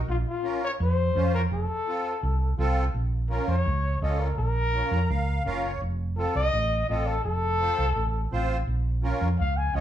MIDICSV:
0, 0, Header, 1, 4, 480
1, 0, Start_track
1, 0, Key_signature, -5, "minor"
1, 0, Tempo, 358209
1, 115, Time_signature, 4, 2, 24, 8
1, 13137, End_track
2, 0, Start_track
2, 0, Title_t, "Trumpet"
2, 0, Program_c, 0, 56
2, 125, Note_on_c, 0, 65, 90
2, 231, Note_off_c, 0, 65, 0
2, 374, Note_on_c, 0, 65, 86
2, 812, Note_off_c, 0, 65, 0
2, 860, Note_on_c, 0, 73, 101
2, 962, Note_off_c, 0, 73, 0
2, 1105, Note_on_c, 0, 72, 88
2, 1761, Note_off_c, 0, 72, 0
2, 1800, Note_on_c, 0, 70, 86
2, 1907, Note_off_c, 0, 70, 0
2, 2057, Note_on_c, 0, 69, 90
2, 3433, Note_off_c, 0, 69, 0
2, 4432, Note_on_c, 0, 70, 88
2, 4657, Note_off_c, 0, 70, 0
2, 4665, Note_on_c, 0, 73, 94
2, 5369, Note_off_c, 0, 73, 0
2, 5387, Note_on_c, 0, 75, 76
2, 5625, Note_on_c, 0, 70, 74
2, 5645, Note_off_c, 0, 75, 0
2, 5859, Note_off_c, 0, 70, 0
2, 5867, Note_on_c, 0, 70, 106
2, 7269, Note_off_c, 0, 70, 0
2, 8265, Note_on_c, 0, 69, 85
2, 8504, Note_off_c, 0, 69, 0
2, 8518, Note_on_c, 0, 75, 107
2, 9215, Note_off_c, 0, 75, 0
2, 9237, Note_on_c, 0, 75, 86
2, 9472, Note_on_c, 0, 69, 88
2, 9492, Note_off_c, 0, 75, 0
2, 9694, Note_off_c, 0, 69, 0
2, 9702, Note_on_c, 0, 69, 117
2, 11104, Note_off_c, 0, 69, 0
2, 12582, Note_on_c, 0, 77, 89
2, 12825, Note_on_c, 0, 80, 77
2, 12845, Note_off_c, 0, 77, 0
2, 13065, Note_on_c, 0, 75, 90
2, 13085, Note_off_c, 0, 80, 0
2, 13137, Note_off_c, 0, 75, 0
2, 13137, End_track
3, 0, Start_track
3, 0, Title_t, "Accordion"
3, 0, Program_c, 1, 21
3, 576, Note_on_c, 1, 61, 75
3, 586, Note_on_c, 1, 65, 67
3, 592, Note_on_c, 1, 70, 80
3, 922, Note_off_c, 1, 61, 0
3, 927, Note_off_c, 1, 65, 0
3, 929, Note_off_c, 1, 70, 0
3, 1543, Note_on_c, 1, 61, 69
3, 1549, Note_on_c, 1, 65, 62
3, 1557, Note_on_c, 1, 72, 86
3, 1886, Note_off_c, 1, 61, 0
3, 1888, Note_off_c, 1, 65, 0
3, 1893, Note_off_c, 1, 72, 0
3, 2511, Note_on_c, 1, 60, 72
3, 2514, Note_on_c, 1, 65, 62
3, 2517, Note_on_c, 1, 69, 71
3, 2850, Note_off_c, 1, 60, 0
3, 2851, Note_off_c, 1, 65, 0
3, 2853, Note_off_c, 1, 69, 0
3, 3466, Note_on_c, 1, 60, 79
3, 3468, Note_on_c, 1, 65, 83
3, 3476, Note_on_c, 1, 69, 95
3, 3807, Note_off_c, 1, 60, 0
3, 3808, Note_off_c, 1, 65, 0
3, 3812, Note_off_c, 1, 69, 0
3, 4416, Note_on_c, 1, 61, 62
3, 4420, Note_on_c, 1, 65, 61
3, 4431, Note_on_c, 1, 70, 77
3, 4763, Note_off_c, 1, 61, 0
3, 4765, Note_off_c, 1, 65, 0
3, 4770, Note_off_c, 1, 70, 0
3, 5390, Note_on_c, 1, 61, 77
3, 5394, Note_on_c, 1, 65, 65
3, 5397, Note_on_c, 1, 69, 73
3, 5730, Note_off_c, 1, 61, 0
3, 5731, Note_off_c, 1, 65, 0
3, 5733, Note_off_c, 1, 69, 0
3, 6351, Note_on_c, 1, 61, 71
3, 6355, Note_on_c, 1, 65, 67
3, 6360, Note_on_c, 1, 70, 75
3, 6596, Note_on_c, 1, 82, 80
3, 6690, Note_off_c, 1, 61, 0
3, 6692, Note_off_c, 1, 65, 0
3, 6695, Note_off_c, 1, 70, 0
3, 6820, Note_off_c, 1, 82, 0
3, 6831, Note_on_c, 1, 77, 88
3, 7280, Note_off_c, 1, 77, 0
3, 7313, Note_on_c, 1, 61, 76
3, 7318, Note_on_c, 1, 77, 67
3, 7320, Note_on_c, 1, 65, 78
3, 7324, Note_on_c, 1, 70, 91
3, 7541, Note_off_c, 1, 77, 0
3, 7563, Note_on_c, 1, 73, 73
3, 7651, Note_off_c, 1, 61, 0
3, 7654, Note_off_c, 1, 65, 0
3, 7656, Note_off_c, 1, 70, 0
3, 7783, Note_off_c, 1, 73, 0
3, 8274, Note_on_c, 1, 60, 74
3, 8280, Note_on_c, 1, 65, 69
3, 8288, Note_on_c, 1, 69, 75
3, 8611, Note_off_c, 1, 60, 0
3, 8614, Note_off_c, 1, 65, 0
3, 8618, Note_off_c, 1, 69, 0
3, 9232, Note_on_c, 1, 60, 77
3, 9241, Note_on_c, 1, 65, 70
3, 9246, Note_on_c, 1, 69, 81
3, 9570, Note_off_c, 1, 60, 0
3, 9574, Note_off_c, 1, 65, 0
3, 9577, Note_off_c, 1, 69, 0
3, 10194, Note_on_c, 1, 60, 72
3, 10198, Note_on_c, 1, 65, 64
3, 10199, Note_on_c, 1, 72, 79
3, 10530, Note_off_c, 1, 60, 0
3, 10532, Note_off_c, 1, 65, 0
3, 10533, Note_off_c, 1, 72, 0
3, 11144, Note_on_c, 1, 60, 86
3, 11155, Note_on_c, 1, 65, 73
3, 11155, Note_on_c, 1, 72, 97
3, 11485, Note_off_c, 1, 60, 0
3, 11490, Note_off_c, 1, 72, 0
3, 11491, Note_off_c, 1, 65, 0
3, 12101, Note_on_c, 1, 61, 82
3, 12105, Note_on_c, 1, 65, 75
3, 12111, Note_on_c, 1, 70, 90
3, 12443, Note_off_c, 1, 61, 0
3, 12445, Note_off_c, 1, 65, 0
3, 12448, Note_off_c, 1, 70, 0
3, 13056, Note_on_c, 1, 61, 71
3, 13065, Note_on_c, 1, 65, 65
3, 13068, Note_on_c, 1, 73, 81
3, 13137, Note_off_c, 1, 61, 0
3, 13137, Note_off_c, 1, 65, 0
3, 13137, Note_off_c, 1, 73, 0
3, 13137, End_track
4, 0, Start_track
4, 0, Title_t, "Fingered electric bass"
4, 0, Program_c, 2, 33
4, 109, Note_on_c, 2, 34, 96
4, 303, Note_off_c, 2, 34, 0
4, 1075, Note_on_c, 2, 41, 103
4, 1459, Note_off_c, 2, 41, 0
4, 1552, Note_on_c, 2, 41, 98
4, 1938, Note_off_c, 2, 41, 0
4, 2029, Note_on_c, 2, 29, 96
4, 2224, Note_off_c, 2, 29, 0
4, 2989, Note_on_c, 2, 36, 98
4, 3376, Note_off_c, 2, 36, 0
4, 3465, Note_on_c, 2, 36, 107
4, 3853, Note_off_c, 2, 36, 0
4, 3943, Note_on_c, 2, 34, 81
4, 4525, Note_off_c, 2, 34, 0
4, 4661, Note_on_c, 2, 41, 89
4, 4859, Note_off_c, 2, 41, 0
4, 4905, Note_on_c, 2, 37, 115
4, 5294, Note_off_c, 2, 37, 0
4, 5386, Note_on_c, 2, 37, 94
4, 5774, Note_off_c, 2, 37, 0
4, 5866, Note_on_c, 2, 34, 95
4, 6446, Note_off_c, 2, 34, 0
4, 6585, Note_on_c, 2, 41, 89
4, 6782, Note_off_c, 2, 41, 0
4, 6837, Note_on_c, 2, 37, 116
4, 7221, Note_off_c, 2, 37, 0
4, 7318, Note_on_c, 2, 30, 88
4, 7702, Note_off_c, 2, 30, 0
4, 7792, Note_on_c, 2, 29, 92
4, 8370, Note_off_c, 2, 29, 0
4, 8514, Note_on_c, 2, 36, 87
4, 8707, Note_off_c, 2, 36, 0
4, 8757, Note_on_c, 2, 33, 111
4, 9141, Note_off_c, 2, 33, 0
4, 9241, Note_on_c, 2, 33, 91
4, 9623, Note_off_c, 2, 33, 0
4, 9712, Note_on_c, 2, 29, 89
4, 10289, Note_off_c, 2, 29, 0
4, 10431, Note_on_c, 2, 36, 96
4, 10625, Note_off_c, 2, 36, 0
4, 10666, Note_on_c, 2, 33, 109
4, 11053, Note_off_c, 2, 33, 0
4, 11152, Note_on_c, 2, 33, 93
4, 11537, Note_off_c, 2, 33, 0
4, 11622, Note_on_c, 2, 34, 93
4, 12202, Note_off_c, 2, 34, 0
4, 12345, Note_on_c, 2, 41, 90
4, 12540, Note_off_c, 2, 41, 0
4, 12588, Note_on_c, 2, 37, 105
4, 12973, Note_off_c, 2, 37, 0
4, 13062, Note_on_c, 2, 37, 96
4, 13137, Note_off_c, 2, 37, 0
4, 13137, End_track
0, 0, End_of_file